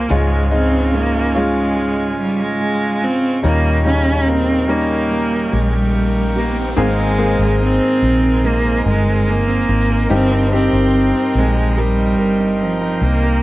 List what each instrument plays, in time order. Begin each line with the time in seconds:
Already playing: grand piano F3 C4 D#4, cello A#3
0.09 fingered electric bass C#2, grand piano G#2 G#3 C#4 F4, steel-string acoustic guitar C#3, cello G#3, accordion F4 F5 G#5 C#6
0.51 grand piano C#3 G#3 D#4, cello C4, steel-string acoustic guitar C#4
0.93 steel-string acoustic guitar G#3, cello A#3
1.34 grand piano G#3 C#4 F4, cello G#3
1.77 steel-string acoustic guitar G#3
2.19 fingered electric bass G#1, cello G3, steel-string acoustic guitar F4
2.41 cello G#3
2.60 steel-string acoustic guitar G#3
3.02 cello C4, steel-string acoustic guitar F4
3.43 fingered electric bass D#2, grand piano A#2 G3 C#4 D#4, steel-string acoustic guitar D#3, cello A#3, accordion D#4 A#4 G5, riser
3.85 grand piano C#3 G3 D#4, steel-string acoustic guitar C#4, cello C#4
4.27 steel-string acoustic guitar A#3, cello C4
4.68 grand piano G3 C#4 D#4, cello A#3, steel-string acoustic guitar C#4
5.11 steel-string acoustic guitar A#3
5.52 fingered electric bass A#1, cello G#3, steel-string acoustic guitar G4
5.74 cello G3
5.94 steel-string acoustic guitar A#3
6.36 cello A#3, steel-string acoustic guitar G4
6.76 fingered electric bass G#1, grand piano G#2 D#3 A#3 C4 G#4, steel-string acoustic guitar G#3 A#4, cello G#3, accordion A#4 D#5 G#5 C6
6.99 steel-string acoustic guitar C4
7.18 grand piano A#3 C4 G#4, steel-string acoustic guitar A#4
7.39 fingered electric bass G#1, steel-string acoustic guitar C4
7.60 cello C4, steel-string acoustic guitar D#4
7.81 steel-string acoustic guitar C4
8.02 fingered electric bass A#1, steel-string acoustic guitar D#4
8.23 steel-string acoustic guitar A#4
8.44 steel-string acoustic guitar G#3 A#4, cello A#3
8.65 steel-string acoustic guitar C4
8.85 fingered electric bass G1, cello G#3, steel-string acoustic guitar A#4
9.07 steel-string acoustic guitar C4
9.27 cello A#3, steel-string acoustic guitar D#4
9.47 steel-string acoustic guitar C4
9.68 fingered electric bass G#1, steel-string acoustic guitar D#4
9.90 steel-string acoustic guitar A#4
10.09 fingered electric bass G1, grand piano G2 G3 C4 D#4 G4, cello C4, steel-string acoustic guitar A#4, accordion G5
10.31 steel-string acoustic guitar D#4
10.52 grand piano C4 D#4 G4, cello C4, steel-string acoustic guitar A#4
10.73 fingered electric bass G1, steel-string acoustic guitar D#4
10.95 steel-string acoustic guitar C4
11.15 steel-string acoustic guitar D#4
11.35 fingered electric bass A#1, cello G#3, steel-string acoustic guitar C4
11.57 steel-string acoustic guitar A#4
11.77 steel-string acoustic guitar G3 A#4, cello G3
11.98 steel-string acoustic guitar D#4
12.18 fingered electric bass G1, steel-string acoustic guitar A#4
12.40 steel-string acoustic guitar D#4
12.61 cello F3, steel-string acoustic guitar C4
12.82 steel-string acoustic guitar D#4
13.02 fingered electric bass C2, cello A#3, steel-string acoustic guitar C4
13.23 steel-string acoustic guitar A#4